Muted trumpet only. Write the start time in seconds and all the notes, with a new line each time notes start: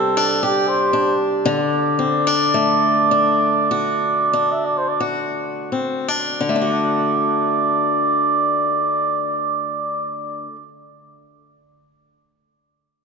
Already playing: A4
0.43 G4
0.68 C5
1.48 D5
4.52 E5
4.65 D5
4.77 C5
4.89 D5
6.49 D5